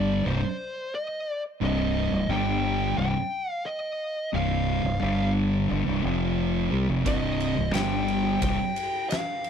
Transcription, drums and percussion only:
0, 0, Header, 1, 2, 480
1, 0, Start_track
1, 0, Key_signature, -3, "minor"
1, 0, Tempo, 681044
1, 1137, Time_signature, 4, 2, 24, 8
1, 6694, End_track
2, 0, Start_track
2, 0, Title_t, "Drums"
2, 4976, Note_on_c, 9, 36, 112
2, 4977, Note_on_c, 9, 51, 82
2, 5046, Note_off_c, 9, 36, 0
2, 5048, Note_off_c, 9, 51, 0
2, 5218, Note_on_c, 9, 51, 67
2, 5289, Note_off_c, 9, 51, 0
2, 5453, Note_on_c, 9, 51, 92
2, 5466, Note_on_c, 9, 38, 118
2, 5523, Note_off_c, 9, 51, 0
2, 5536, Note_off_c, 9, 38, 0
2, 5697, Note_on_c, 9, 51, 63
2, 5767, Note_off_c, 9, 51, 0
2, 5933, Note_on_c, 9, 51, 108
2, 5936, Note_on_c, 9, 36, 106
2, 6004, Note_off_c, 9, 51, 0
2, 6006, Note_off_c, 9, 36, 0
2, 6176, Note_on_c, 9, 51, 80
2, 6246, Note_off_c, 9, 51, 0
2, 6417, Note_on_c, 9, 51, 95
2, 6430, Note_on_c, 9, 38, 113
2, 6488, Note_off_c, 9, 51, 0
2, 6501, Note_off_c, 9, 38, 0
2, 6655, Note_on_c, 9, 51, 72
2, 6694, Note_off_c, 9, 51, 0
2, 6694, End_track
0, 0, End_of_file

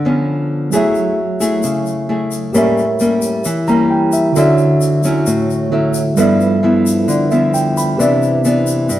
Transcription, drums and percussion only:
0, 0, Header, 1, 2, 480
1, 0, Start_track
1, 0, Tempo, 453858
1, 763, Time_signature, 4, 2, 24, 8
1, 9514, End_track
2, 0, Start_track
2, 0, Title_t, "Drums"
2, 764, Note_on_c, 9, 82, 58
2, 870, Note_off_c, 9, 82, 0
2, 1002, Note_on_c, 9, 82, 25
2, 1108, Note_off_c, 9, 82, 0
2, 1489, Note_on_c, 9, 82, 61
2, 1595, Note_off_c, 9, 82, 0
2, 1723, Note_on_c, 9, 82, 62
2, 1829, Note_off_c, 9, 82, 0
2, 1967, Note_on_c, 9, 82, 23
2, 2072, Note_off_c, 9, 82, 0
2, 2447, Note_on_c, 9, 82, 57
2, 2552, Note_off_c, 9, 82, 0
2, 2691, Note_on_c, 9, 82, 62
2, 2796, Note_off_c, 9, 82, 0
2, 2936, Note_on_c, 9, 82, 25
2, 3042, Note_off_c, 9, 82, 0
2, 3167, Note_on_c, 9, 82, 51
2, 3273, Note_off_c, 9, 82, 0
2, 3402, Note_on_c, 9, 82, 61
2, 3508, Note_off_c, 9, 82, 0
2, 3642, Note_on_c, 9, 82, 58
2, 3748, Note_off_c, 9, 82, 0
2, 3887, Note_on_c, 9, 82, 24
2, 3993, Note_off_c, 9, 82, 0
2, 4359, Note_on_c, 9, 82, 55
2, 4464, Note_off_c, 9, 82, 0
2, 4609, Note_on_c, 9, 82, 57
2, 4714, Note_off_c, 9, 82, 0
2, 4843, Note_on_c, 9, 82, 24
2, 4948, Note_off_c, 9, 82, 0
2, 5087, Note_on_c, 9, 82, 47
2, 5192, Note_off_c, 9, 82, 0
2, 5324, Note_on_c, 9, 82, 60
2, 5430, Note_off_c, 9, 82, 0
2, 5567, Note_on_c, 9, 82, 61
2, 5673, Note_off_c, 9, 82, 0
2, 5818, Note_on_c, 9, 82, 22
2, 5924, Note_off_c, 9, 82, 0
2, 6280, Note_on_c, 9, 82, 59
2, 6386, Note_off_c, 9, 82, 0
2, 6525, Note_on_c, 9, 82, 57
2, 6631, Note_off_c, 9, 82, 0
2, 6771, Note_on_c, 9, 82, 25
2, 6877, Note_off_c, 9, 82, 0
2, 7259, Note_on_c, 9, 82, 59
2, 7364, Note_off_c, 9, 82, 0
2, 7494, Note_on_c, 9, 82, 60
2, 7600, Note_off_c, 9, 82, 0
2, 7731, Note_on_c, 9, 82, 24
2, 7837, Note_off_c, 9, 82, 0
2, 7976, Note_on_c, 9, 82, 53
2, 8082, Note_off_c, 9, 82, 0
2, 8221, Note_on_c, 9, 82, 59
2, 8327, Note_off_c, 9, 82, 0
2, 8463, Note_on_c, 9, 82, 57
2, 8569, Note_off_c, 9, 82, 0
2, 8695, Note_on_c, 9, 82, 23
2, 8801, Note_off_c, 9, 82, 0
2, 8932, Note_on_c, 9, 82, 52
2, 9038, Note_off_c, 9, 82, 0
2, 9166, Note_on_c, 9, 82, 60
2, 9272, Note_off_c, 9, 82, 0
2, 9405, Note_on_c, 9, 82, 57
2, 9511, Note_off_c, 9, 82, 0
2, 9514, End_track
0, 0, End_of_file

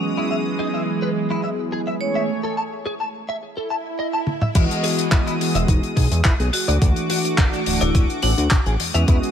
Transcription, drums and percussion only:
0, 0, Header, 1, 2, 480
1, 0, Start_track
1, 0, Key_signature, 4, "major"
1, 0, Tempo, 566038
1, 20, Time_signature, 4, 2, 24, 8
1, 7896, End_track
2, 0, Start_track
2, 0, Title_t, "Drums"
2, 3619, Note_on_c, 9, 48, 56
2, 3704, Note_off_c, 9, 48, 0
2, 3744, Note_on_c, 9, 47, 61
2, 3829, Note_off_c, 9, 47, 0
2, 3858, Note_on_c, 9, 42, 70
2, 3860, Note_on_c, 9, 36, 127
2, 3866, Note_on_c, 9, 49, 100
2, 3943, Note_off_c, 9, 42, 0
2, 3945, Note_off_c, 9, 36, 0
2, 3950, Note_off_c, 9, 49, 0
2, 3994, Note_on_c, 9, 42, 51
2, 4078, Note_off_c, 9, 42, 0
2, 4102, Note_on_c, 9, 46, 103
2, 4187, Note_off_c, 9, 46, 0
2, 4227, Note_on_c, 9, 42, 69
2, 4312, Note_off_c, 9, 42, 0
2, 4336, Note_on_c, 9, 42, 67
2, 4340, Note_on_c, 9, 39, 119
2, 4341, Note_on_c, 9, 36, 121
2, 4421, Note_off_c, 9, 42, 0
2, 4424, Note_off_c, 9, 39, 0
2, 4425, Note_off_c, 9, 36, 0
2, 4471, Note_on_c, 9, 42, 50
2, 4556, Note_off_c, 9, 42, 0
2, 4589, Note_on_c, 9, 46, 99
2, 4673, Note_off_c, 9, 46, 0
2, 4707, Note_on_c, 9, 42, 74
2, 4792, Note_off_c, 9, 42, 0
2, 4820, Note_on_c, 9, 36, 117
2, 4823, Note_on_c, 9, 42, 65
2, 4905, Note_off_c, 9, 36, 0
2, 4908, Note_off_c, 9, 42, 0
2, 4946, Note_on_c, 9, 42, 47
2, 5031, Note_off_c, 9, 42, 0
2, 5061, Note_on_c, 9, 36, 64
2, 5061, Note_on_c, 9, 46, 98
2, 5145, Note_off_c, 9, 46, 0
2, 5146, Note_off_c, 9, 36, 0
2, 5186, Note_on_c, 9, 42, 73
2, 5271, Note_off_c, 9, 42, 0
2, 5295, Note_on_c, 9, 39, 112
2, 5299, Note_on_c, 9, 42, 70
2, 5301, Note_on_c, 9, 36, 116
2, 5379, Note_off_c, 9, 39, 0
2, 5384, Note_off_c, 9, 42, 0
2, 5386, Note_off_c, 9, 36, 0
2, 5426, Note_on_c, 9, 42, 43
2, 5511, Note_off_c, 9, 42, 0
2, 5541, Note_on_c, 9, 46, 118
2, 5626, Note_off_c, 9, 46, 0
2, 5669, Note_on_c, 9, 42, 71
2, 5754, Note_off_c, 9, 42, 0
2, 5780, Note_on_c, 9, 42, 68
2, 5781, Note_on_c, 9, 36, 127
2, 5865, Note_off_c, 9, 42, 0
2, 5866, Note_off_c, 9, 36, 0
2, 5904, Note_on_c, 9, 42, 50
2, 5989, Note_off_c, 9, 42, 0
2, 6018, Note_on_c, 9, 46, 117
2, 6103, Note_off_c, 9, 46, 0
2, 6147, Note_on_c, 9, 42, 61
2, 6232, Note_off_c, 9, 42, 0
2, 6259, Note_on_c, 9, 39, 124
2, 6259, Note_on_c, 9, 42, 71
2, 6261, Note_on_c, 9, 36, 126
2, 6343, Note_off_c, 9, 39, 0
2, 6344, Note_off_c, 9, 42, 0
2, 6345, Note_off_c, 9, 36, 0
2, 6388, Note_on_c, 9, 42, 45
2, 6473, Note_off_c, 9, 42, 0
2, 6499, Note_on_c, 9, 46, 112
2, 6584, Note_off_c, 9, 46, 0
2, 6623, Note_on_c, 9, 42, 67
2, 6708, Note_off_c, 9, 42, 0
2, 6740, Note_on_c, 9, 36, 127
2, 6741, Note_on_c, 9, 42, 66
2, 6825, Note_off_c, 9, 36, 0
2, 6826, Note_off_c, 9, 42, 0
2, 6867, Note_on_c, 9, 42, 42
2, 6952, Note_off_c, 9, 42, 0
2, 6974, Note_on_c, 9, 46, 113
2, 7058, Note_off_c, 9, 46, 0
2, 7105, Note_on_c, 9, 42, 70
2, 7190, Note_off_c, 9, 42, 0
2, 7212, Note_on_c, 9, 39, 118
2, 7220, Note_on_c, 9, 36, 125
2, 7220, Note_on_c, 9, 42, 68
2, 7297, Note_off_c, 9, 39, 0
2, 7305, Note_off_c, 9, 36, 0
2, 7305, Note_off_c, 9, 42, 0
2, 7344, Note_on_c, 9, 42, 39
2, 7429, Note_off_c, 9, 42, 0
2, 7461, Note_on_c, 9, 46, 118
2, 7546, Note_off_c, 9, 46, 0
2, 7585, Note_on_c, 9, 42, 70
2, 7670, Note_off_c, 9, 42, 0
2, 7698, Note_on_c, 9, 42, 64
2, 7700, Note_on_c, 9, 36, 127
2, 7783, Note_off_c, 9, 42, 0
2, 7785, Note_off_c, 9, 36, 0
2, 7829, Note_on_c, 9, 42, 44
2, 7896, Note_off_c, 9, 42, 0
2, 7896, End_track
0, 0, End_of_file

